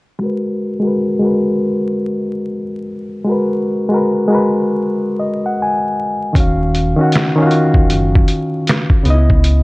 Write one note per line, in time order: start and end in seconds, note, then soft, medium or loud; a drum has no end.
0.19 0.72 G#3 medium
0.19 0.73 F#4 medium
0.23 0.75 A#4 medium
0.23 0.76 B4 medium
0.80 1.13 G#3 medium
0.80 1.14 F#4 medium
0.85 1.16 A#4 medium
0.85 1.17 B4 medium
1.19 2.48 G#3 medium
1.19 2.49 F#4 medium
1.24 2.50 A#4 medium
1.24 2.51 B4 medium
3.25 3.79 G#3 medium
3.25 3.80 F#4 medium
3.29 3.81 A#4 medium
3.29 3.82 B4 medium
3.89 4.22 G#3 medium
3.89 4.23 F#4 medium
3.94 4.24 A#4 medium
3.94 4.25 B4 medium
4.28 5.56 G#3 medium
4.28 5.57 F#4 medium
4.32 5.58 A#4 medium
4.32 5.59 B4 medium
5.20 5.43 D#5 medium
5.46 5.58 F#5 medium
5.62 6.33 G#5 medium
6.33 6.95 D#1 loud
6.33 6.87 D#3 medium
6.33 6.88 C#4 medium
6.33 kick medium
6.33 closed hi-hat medium
6.38 6.89 F#4 medium
6.38 6.91 F5 medium
6.75 closed hi-hat medium
6.96 7.29 D#3 medium
6.96 7.30 C#4 medium
7.01 7.31 F#4 medium
7.01 7.33 F#5 medium
7.12 snare loud
7.12 closed hi-hat medium
7.17 finger snap loud
7.35 8.64 D#3 medium
7.35 8.65 C#4 medium
7.40 7.43 F4 medium
7.40 8.67 F5 medium
7.47 8.69 F#4 medium
7.51 closed hi-hat medium
7.74 7.87 D#1 loud
7.74 kick medium
7.90 8.25 F#1 loud
7.90 closed hi-hat medium
8.15 kick medium
8.28 closed hi-hat medium
8.67 finger snap medium
8.67 snare loud
8.67 closed hi-hat medium
8.90 kick medium
9.03 9.63 C#2 loud
9.03 9.63 C#3 medium
9.03 9.63 B3 medium
9.03 closed hi-hat medium
9.08 9.15 D#4 medium
9.08 9.63 D#5 medium
9.14 9.63 E4 medium
9.30 kick medium
9.44 closed hi-hat medium